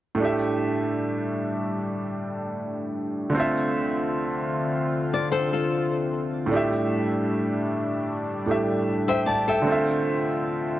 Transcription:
0.14 3.28 A2 medium
0.14 3.30 A3 medium
0.18 3.31 G3 medium
0.18 3.31 A3 medium
0.18 3.31 D4 medium
0.18 3.32 G4 medium
0.24 3.33 E5 medium
3.30 6.44 D3 medium
3.30 6.45 A3 medium
3.34 6.47 D3 medium
3.34 6.47 C4 medium
3.34 6.47 F4 medium
3.34 6.48 F4 medium
3.40 6.49 E5 medium
5.14 5.31 D5 medium
5.32 5.52 A4 medium
5.32 5.52 C5 medium
5.53 6.46 F4 medium
5.53 6.46 A4 medium
6.46 8.42 A2 medium
6.46 8.43 A3 medium
6.51 9.63 G3 medium
6.51 9.63 A3 medium
6.51 9.63 D4 medium
6.51 8.44 D4 medium
6.51 8.45 G4 medium
6.56 8.47 E5 medium
8.46 9.65 A2 medium
8.46 9.63 A3 soft
8.46 9.67 D4 soft
8.46 9.67 G4 medium
8.51 8.89 E5 medium
9.08 9.26 C5 medium
9.08 9.26 E5 medium
9.08 9.26 G5 medium
9.26 9.47 D5 medium
9.26 9.47 A5 medium
9.48 9.85 A4 medium
9.48 9.70 E5 medium
9.48 9.86 G5 medium
9.62 10.80 D3 medium
9.62 10.80 A3 medium
9.66 10.80 D3 medium
9.66 10.80 C4 medium
9.66 10.80 F4 medium
9.72 10.80 E5 medium

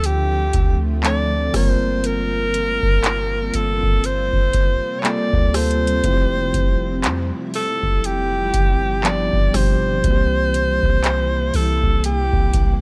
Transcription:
0.00 0.51 D2 loud
0.00 1.50 D3 medium
0.00 1.50 F3 medium
0.00 1.50 A3 medium
0.00 1.50 C4 medium
0.00 6.00 F4 medium
0.00 closed hi-hat medium
0.06 0.82 G4 loud
0.53 1.50 D2 loud
0.53 kick loud
0.53 closed hi-hat medium
1.03 1.49 F3 medium
1.03 1.49 A3 medium
1.03 1.50 C4 medium
1.03 1.50 D4 medium
1.03 1.50 A4 medium
1.03 1.51 D5 loud
1.03 clap loud
1.03 closed hi-hat medium
1.53 2.79 G1 loud
1.53 9.00 C3 medium
1.53 3.35 G3 medium
1.53 12.81 G3 medium
1.53 3.35 A#3 medium
1.53 6.00 A#3 medium
1.53 9.00 C4 medium
1.53 3.36 C4 medium
1.53 3.36 F4 medium
1.53 3.36 A#4 medium
1.53 2.08 C5 loud
1.53 kick loud
1.53 cross-stick medium
1.53 open hi-hat medium
2.04 3.57 A#4 loud
2.04 closed hi-hat medium
2.54 closed hi-hat medium
2.83 3.51 G1 medium
2.83 kick loud
3.04 clap loud
3.04 closed hi-hat medium
3.54 3.82 G1 loud
3.54 4.07 A4 loud
3.54 closed hi-hat medium
3.83 4.31 G1 loud
3.83 kick medium
4.04 5.01 C5 loud
4.04 closed hi-hat medium
4.33 4.81 G1 loud
4.33 kick medium
4.53 kick loud
4.53 closed hi-hat medium
5.00 5.07 C#5 medium
5.04 5.49 G3 medium
5.04 5.49 A#3 medium
5.04 5.50 C4 medium
5.04 5.50 F4 medium
5.04 5.50 A4 medium
5.04 5.57 D5 loud
5.04 clap loud
5.04 closed hi-hat medium
5.33 6.01 D2 loud
5.33 kick loud
5.54 5.99 G3 medium
5.54 5.99 A#3 medium
5.54 6.00 C4 medium
5.54 6.00 F4 medium
5.54 6.00 A4 medium
5.54 7.31 C5 loud
5.54 cross-stick medium
5.54 closed hi-hat soft
5.54 open hi-hat medium
5.71 closed hi-hat medium
5.87 closed hi-hat medium
6.03 6.52 F1 loud
6.03 7.85 F3 medium
6.03 9.01 F3 medium
6.03 7.85 A3 medium
6.03 7.85 C4 medium
6.03 9.01 E4 medium
6.03 7.86 E4 medium
6.03 6.13 F4 medium
6.03 kick loud
6.03 closed hi-hat medium
6.13 7.89 G4 medium
6.54 7.06 F1 loud
6.54 kick loud
6.54 closed hi-hat medium
7.04 7.32 F2 loud
7.04 clap loud
7.04 closed hi-hat medium
7.54 8.07 A4 loud
7.54 open hi-hat medium
7.83 8.51 F1 loud
7.83 kick medium
8.04 9.08 G4 loud
8.04 closed hi-hat medium
8.54 9.30 G1 loud
8.54 kick loud
8.54 closed hi-hat medium
9.04 9.49 F3 medium
9.04 9.49 G3 medium
9.04 9.50 B3 medium
9.04 9.50 D4 medium
9.04 9.50 G4 medium
9.04 9.58 D5 loud
9.04 clap loud
9.04 closed hi-hat medium
9.33 9.53 G1 loud
9.33 kick loud
9.53 10.02 G1 loud
9.53 10.00 B2 medium
9.53 9.99 F3 medium
9.53 9.99 G3 medium
9.53 10.00 D4 medium
9.53 10.00 G4 medium
9.53 11.57 C5 loud
9.53 kick medium
9.53 cross-stick medium
9.53 open hi-hat medium
10.03 10.80 C2 loud
10.03 12.81 C3 medium
10.03 11.85 E3 medium
10.03 12.81 E3 medium
10.03 11.85 G3 medium
10.03 12.81 A#3 medium
10.03 11.85 A#3 medium
10.03 11.86 C4 medium
10.03 12.81 E4 medium
10.03 10.13 F#4 medium
10.03 kick loud
10.03 closed hi-hat medium
10.12 11.89 G4 medium
10.54 closed hi-hat medium
10.83 11.51 C2 loud
10.83 kick medium
11.04 clap loud
11.04 closed hi-hat medium
11.54 11.82 C2 loud
11.54 12.05 A4 loud
11.54 open hi-hat medium
11.83 12.31 C2 loud
11.83 kick medium
12.04 12.78 G4 loud
12.04 closed hi-hat medium
12.33 12.81 C2 loud
12.33 kick medium
12.53 kick loud
12.53 closed hi-hat medium

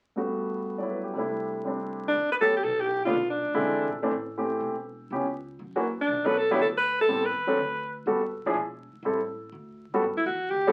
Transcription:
0.16 1.15 G2 soft
0.16 1.13 G3 soft
0.16 1.15 A3 soft
0.16 1.16 B3 soft
0.16 1.16 F#4 soft
0.78 1.15 F#3 soft
0.78 0.96 D5 soft
0.83 1.17 E4 soft
0.90 1.09 B4 soft
1.03 1.21 G4 soft
1.14 2.14 C3 medium
1.14 1.63 G3 soft
1.14 2.15 A3 soft
1.14 1.66 D4 soft
1.19 2.16 E4 soft
1.65 2.14 G3 soft
1.65 2.15 C4 soft
1.65 2.16 D4 soft
2.08 2.29 D4 medium
2.13 2.61 G1 medium
2.32 2.36 B4 medium
2.41 2.53 F#3 soft
2.41 2.53 A3 soft
2.41 2.54 B3 soft
2.41 2.54 G4 medium
2.41 2.54 A4 medium
2.57 2.65 G4 medium
2.64 3.11 B1 medium
2.64 2.82 A4 medium
2.80 3.04 G4 medium
3.05 3.14 D3 medium
3.05 3.14 A3 medium
3.05 3.14 B3 medium
3.05 3.14 D4 medium
3.05 3.27 F4 medium
3.12 3.43 B1 medium
3.30 3.99 D4 medium
3.46 3.53 F2 medium
3.54 3.62 B2 medium
3.54 3.86 D3 medium
3.54 3.86 G#3 medium
3.54 3.86 C4 medium
3.54 3.86 E4 medium
3.63 3.86 E2 medium
3.87 4.10 A#1 medium
4.02 4.11 E3 medium
4.02 4.11 A3 medium
4.02 4.11 C4 medium
4.02 4.12 D4 medium
4.11 4.58 A1 medium
4.37 4.73 E3 medium
4.37 4.74 A3 soft
4.37 4.74 C4 soft
4.37 4.74 G4 medium
4.60 5.08 E1 medium
5.11 5.57 C#2 medium
5.11 5.24 E3 soft
5.11 5.24 B3 soft
5.11 5.25 C#4 soft
5.11 5.25 G4 medium
5.59 6.06 F#2 medium
5.76 5.84 E3 medium
5.76 5.84 A#3 medium
5.76 5.84 D4 soft
5.76 5.84 F#4 medium
6.01 6.27 D4 medium
6.08 6.56 B1 medium
6.25 6.34 F#3 medium
6.25 6.34 B3 medium
6.25 6.34 D4 medium
6.25 6.34 A4 medium
6.25 6.39 B4 medium
6.37 6.54 A4 loud
6.51 6.59 F#3 medium
6.51 6.59 B3 medium
6.51 6.59 D4 medium
6.51 6.59 E4 medium
6.51 6.60 G4 medium
6.59 7.05 D2 medium
6.59 6.68 A4 medium
6.77 6.98 B4 medium
7.01 7.27 A4 medium
7.08 7.31 A1 medium
7.08 7.21 G3 medium
7.08 7.21 B3 soft
7.08 7.21 C4 medium
7.08 7.21 A4 medium
7.25 7.98 B4 medium
7.33 7.55 D#2 medium
7.47 7.56 F#3 medium
7.47 7.56 C4 medium
7.47 7.56 D4 medium
7.47 7.57 A4 medium
7.57 8.04 D2 medium
8.06 8.42 G1 medium
8.06 8.20 G3 medium
8.06 8.20 B3 soft
8.06 8.20 F#4 medium
8.06 8.20 A4 medium
8.45 8.55 F3 medium
8.45 8.55 D4 medium
8.45 8.55 E4 medium
8.45 8.55 G#4 medium
8.45 muted upright bass stroke soft
8.54 8.91 E1 medium
8.93 muted upright bass stroke soft
9.03 9.50 A1 medium
9.03 9.18 G3 medium
9.03 9.18 C4 soft
9.03 9.18 E4 soft
9.03 9.18 A4 medium
9.52 9.89 D2 medium
9.92 10.02 G3 medium
9.92 10.02 B3 medium
9.92 10.02 F#4 medium
9.92 10.03 A4 medium
9.92 muted upright bass stroke soft
10.02 10.16 G2 medium
10.17 10.22 E4 medium
10.17 muted upright bass stroke soft
10.26 10.50 E2 medium
10.26 10.51 F#4 medium
10.50 10.72 D2 medium
10.50 10.72 G4 medium
10.67 10.72 G3 medium
10.67 10.72 B3 medium
10.67 10.72 D4 medium
10.67 10.72 F#4 medium
10.67 10.72 A4 medium

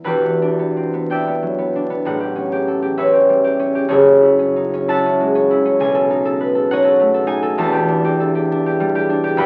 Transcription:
0.00 1.72 G3 soft
0.00 0.23 B3 soft
0.00 1.80 E4 soft
0.00 1.11 E5 medium
0.00 0.75 B5 medium
0.04 2.05 E1 soft
0.04 2.06 E2 medium
0.04 2.06 F#4 medium
0.04 2.19 G4 medium
0.04 2.97 B4 medium
0.24 0.58 B3 soft
0.42 1.09 D4 soft
0.59 0.92 B3 soft
0.77 1.05 C4 soft
0.93 1.26 B3 soft
1.10 1.74 D4 soft
1.10 2.07 D5 medium
1.10 2.96 E5 medium
1.10 3.91 G5 medium
1.27 1.57 B3 soft
1.43 2.06 F#3 soft
1.58 1.89 B3 medium
1.76 2.07 D4 medium
1.90 3.92 B3 medium
2.05 3.92 A1 medium
2.05 3.92 A2 medium
2.05 3.62 F#5 medium
2.20 2.51 G4 soft
2.36 2.96 C#4 soft
2.52 2.81 G4 medium
2.68 2.93 A4 soft
2.82 3.12 G4 medium
2.97 3.58 C#4 medium
2.97 3.92 B4 medium
2.97 3.88 C#5 medium
2.97 4.89 E5 medium
3.13 3.43 G4 medium
3.29 3.92 G3 medium
3.44 3.74 G4 medium
3.59 4.04 C#4 medium
3.75 3.92 G4 medium
3.88 5.82 F#1 medium
3.88 5.82 F#2 medium
3.88 5.83 G#4 medium
3.88 5.93 A4 medium
3.88 6.72 C#5 medium
4.05 4.38 C#4 medium
4.22 4.87 E4 soft
4.39 4.72 C#4 medium
4.56 4.83 D#4 soft
4.74 5.05 C#4 medium
4.88 5.50 E4 medium
4.88 5.83 E5 medium
4.88 6.70 F#5 medium
4.88 7.57 A5 loud
5.06 5.34 C#4 medium
5.20 5.82 G#3 medium
5.35 5.64 C#4 medium
5.51 5.82 E4 medium
5.65 7.61 C#4 medium
5.80 7.61 B1 medium
5.80 7.26 G#5 loud
5.95 6.24 A4 medium
6.10 6.71 D#4 medium
6.25 6.54 A4 medium
6.41 6.66 B4 medium
6.55 6.83 A4 medium
6.71 7.26 D#4 medium
6.71 7.62 C#5 medium
6.71 7.62 D#5 medium
6.71 7.61 F#5 loud
6.84 7.13 A4 medium
7.00 7.61 A3 medium
7.14 7.41 A4 medium
7.27 7.60 D#4 medium
7.27 7.79 G#5 loud
7.43 7.60 A4 medium
7.58 9.36 E1 medium
7.58 9.37 E2 medium
7.58 9.46 A5 medium
7.73 8.03 G4 medium
7.89 8.50 D4 medium
8.05 8.34 G4 medium
8.20 8.46 A4 medium
8.35 8.65 G4 medium
8.51 9.08 D4 medium
8.66 8.94 G4 medium
8.80 9.46 G3 medium
8.95 9.23 G4 medium
9.10 9.46 D4 medium
9.24 9.46 G4 medium
9.37 9.46 E1 medium
9.37 9.46 E2 medium
9.37 9.46 F#5 medium
9.37 9.46 G5 loud
9.37 9.46 B5 loud

